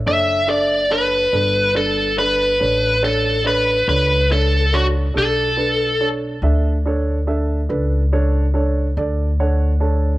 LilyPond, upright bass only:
\new Staff \with { instrumentName = "Upright bass" } { \clef bass \time 12/8 \key b \minor \tempo 4. = 47 fis,,4. g,,4. a,,4. cis,4. | b,,4. d,4. cis,4. d,4. | }